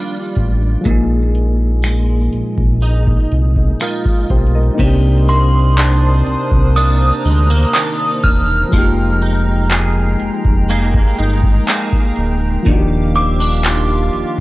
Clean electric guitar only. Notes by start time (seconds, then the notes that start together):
Already playing: D#3 G3 D4 F4
0.85 A#2
1.84 G#3
2.82 D#4
3.81 G#3 D#4 F4
4.79 C3
5.28 A#3
5.77 D4
6.76 A#3 D4
7.25 G#3
7.50 A#3
7.75 D#3 A#3 D4
8.73 F3
9.22 D#4
9.71 G#4
10.69 A#3 D#4 G#4
11.19 D#4
11.68 A#3 D#4 G#4
12.66 D#3
13.15 C4
13.40 D4
13.65 F4